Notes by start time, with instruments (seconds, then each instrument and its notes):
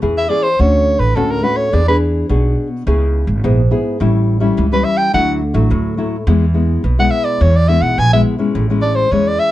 0.02 upright bass E2, nylon-string guitar E3 C#4 E4 G#4
0.18 soprano saxophone E5
0.29 nylon-string guitar C#4 E4 G#4, soprano saxophone D5
0.43 soprano saxophone C5
0.59 upright bass D2, nylon-string guitar D3 A3 C#4 F#4, soprano saxophone C#5
0.99 upright bass A1, soprano saxophone B4
1.16 upright bass D2, nylon-string guitar A2 A3 C#4 F#4, soprano saxophone A4
1.31 soprano saxophone A#4
1.43 nylon-string guitar A3 C#4 F#4, soprano saxophone B4
1.57 soprano saxophone C#5
1.73 upright bass E2, nylon-string guitar E3 B3 D4 G#4, soprano saxophone D5
1.88 nylon-string guitar B3 D4 G#4, soprano saxophone B4
2.29 upright bass B1, nylon-string guitar B2 B3 D4 G#4
2.87 upright bass C#2, nylon-string guitar C#3 B3 E4 G#4
3.27 upright bass G#1
3.44 upright bass A#1, nylon-string guitar G#2 B3 E4 G#4
3.71 nylon-string guitar B3 E4 G#4
4.00 upright bass A1, nylon-string guitar A2 G3 C#4 E4
4.40 nylon-string guitar G3 C#4 E4
4.57 upright bass C#2, nylon-string guitar E3
4.72 nylon-string guitar G3 C#4 E4, soprano saxophone B4
4.84 soprano saxophone E5
4.98 soprano saxophone G5
5.13 upright bass D2, nylon-string guitar D3 F#3 A3 E4, soprano saxophone F#5
5.54 upright bass A1, nylon-string guitar F#3 A3 E4
5.70 upright bass D2, nylon-string guitar A2
5.97 nylon-string guitar F#3 A3 E4
6.27 upright bass E2, nylon-string guitar E3 G#3 B3 E4
6.54 nylon-string guitar G#3 B3 E4
6.84 upright bass B1, nylon-string guitar B2
6.98 nylon-string guitar G#3 B3 E4, soprano saxophone F#5
7.11 soprano saxophone E5
7.24 soprano saxophone D5
7.40 upright bass E2, nylon-string guitar E3, soprano saxophone C#5
7.56 soprano saxophone D5
7.68 nylon-string guitar G#3 B3 E4, soprano saxophone E5
7.81 upright bass B1, soprano saxophone F#5
7.98 upright bass A#1, nylon-string guitar B2, soprano saxophone G#5
8.13 nylon-string guitar G#3 B3 E4, soprano saxophone E5
8.39 nylon-string guitar G#3 C#4 E4
8.55 upright bass A1, nylon-string guitar A2
8.70 nylon-string guitar G#3 C#4 E4
8.82 soprano saxophone D5
8.95 soprano saxophone C5
9.11 upright bass E2, nylon-string guitar E3 G#3 C#4 E4, soprano saxophone C#5
9.28 soprano saxophone D5
9.40 soprano saxophone E5